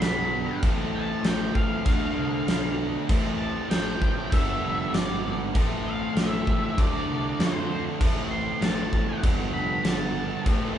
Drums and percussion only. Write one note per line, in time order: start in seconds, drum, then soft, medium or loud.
0.02 snare loud
0.02 crash medium
0.63 kick loud
0.63 crash medium
1.24 snare loud
1.24 crash medium
1.55 kick loud
1.86 kick loud
1.86 crash medium
2.48 snare loud
2.48 crash medium
3.09 kick loud
3.09 crash medium
3.71 snare loud
3.71 crash medium
4.02 kick loud
4.32 kick loud
4.32 crash medium
4.94 snare loud
4.94 crash medium
5.55 kick loud
5.55 crash medium
6.16 snare loud
6.16 crash medium
6.47 kick medium
6.78 kick loud
6.78 crash medium
7.40 snare loud
7.40 crash medium
8.01 kick loud
8.01 crash medium
8.62 snare loud
8.62 crash medium
8.93 kick medium
9.24 kick loud
9.24 crash medium
9.85 snare loud
9.85 crash medium
10.46 kick loud
10.46 crash medium